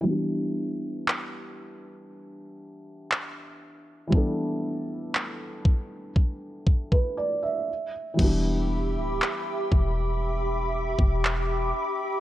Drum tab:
CC |----------------|----------------|x---------------|
CP |----x-------x---|----x-----------|----x-------x---|
BD |----------------|o-----o-o-oo----|o-----o----o----|